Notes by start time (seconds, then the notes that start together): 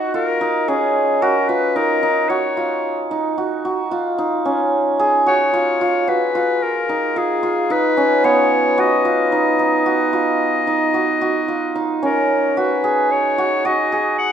Already playing: D#4 F#4
0.14 F4 A#4
0.41 D#4
0.68 C#4 G#4
1.22 F#4 A#4
1.49 F4 B4
1.76 D#4 A#4
2.03 D#4
2.29 F#4 C#5
2.57 F4
3.11 D#4
3.38 F#4
3.65 F#4
3.91 F4
4.18 D#4
4.45 C#4
4.99 G#4
5.26 F#4 C#5
5.54 F4
5.81 F4
6.08 F#4 B4
6.35 F4
6.63 A#4
6.89 D#4
7.16 F4 G#4
7.43 F4
7.70 D#4 B4
7.97 C#4
8.24 B3 C#5
8.78 F#4 D#5
9.05 F4
9.32 D#4
9.59 D#4
9.86 F#4
10.13 F4
10.67 D#4
10.94 F#4
11.21 F#4
11.48 F4
11.75 D#4
12.03 C#4 A#4
12.57 F#4 B4
12.84 G#4
13.12 C#5
13.38 F#4
13.65 F#4 D#5
13.92 G#4
14.19 F#5